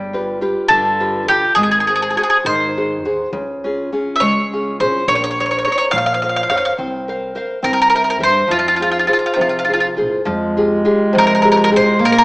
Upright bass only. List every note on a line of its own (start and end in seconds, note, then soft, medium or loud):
0.00 0.38 G1 medium
0.69 1.28 G2 medium
1.28 1.46 D2 medium
1.56 2.13 G#1 medium
2.45 3.05 G#2 medium
3.05 3.23 D#2 medium
3.33 3.90 C#2 medium
4.21 4.81 C#3 medium
4.80 4.98 C2 medium
5.08 5.63 A#1 medium
5.93 6.51 A#2 medium
6.51 6.69 F2 medium
6.79 7.34 C2 medium
7.64 8.23 C2 medium
8.23 8.41 G2 medium
8.50 9.07 F2 medium
9.39 10.01 F3 medium
9.99 10.17 C2 medium
10.26 10.83 F2 medium
11.15 11.75 F3 loud
11.73 11.92 C2 medium
12.00 12.24 A#1 medium